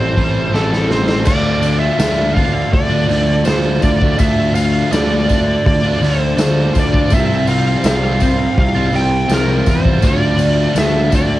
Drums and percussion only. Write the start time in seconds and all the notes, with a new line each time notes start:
0.17 kick, open hi-hat
0.54 snare
0.73 snare
0.91 snare
1.09 snare
1.25 kick, crash, tambourine
1.63 open hi-hat, tambourine
1.99 snare, open hi-hat, tambourine
2.37 kick, open hi-hat
2.73 kick, open hi-hat
3.09 snare, open hi-hat, tambourine
3.45 snare, open hi-hat, tambourine
3.82 kick, open hi-hat, tambourine
4.02 kick
4.19 kick, open hi-hat, tambourine
4.55 open hi-hat, tambourine
4.93 snare, open hi-hat, tambourine
5.29 kick, open hi-hat, tambourine
5.66 kick, open hi-hat
6.03 snare, open hi-hat, tambourine
6.38 snare, open hi-hat, tambourine
6.75 kick, open hi-hat, tambourine
6.94 kick
7.10 kick, open hi-hat, tambourine
7.47 open hi-hat, tambourine
7.84 snare, open hi-hat, tambourine
8.20 kick, open hi-hat, tambourine
8.58 kick, open hi-hat
8.93 open hi-hat, tambourine
9.29 snare, open hi-hat, tambourine
9.66 kick, open hi-hat, tambourine
9.85 kick
10.02 kick, open hi-hat, tambourine
10.39 open hi-hat, tambourine
10.76 snare, open hi-hat, tambourine
11.12 kick, open hi-hat, tambourine